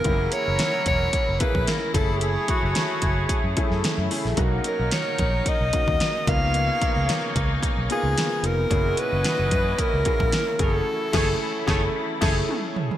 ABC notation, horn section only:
X:1
M:4/4
L:1/8
Q:"Swing 16ths" 1/4=111
K:F#mix
V:1 name="Horn section"
[F,EA]6 z [=A,Gc]- | [=A,Gc]6- [A,Gc] z | [F,DA]6 z [A,Gc]- | [A,Gc]6- [A,Gc] z |
[CFd]6 z [=A,Gc] | z [=A,Gc] z [A,Gc] z [A,Gc] z2 |]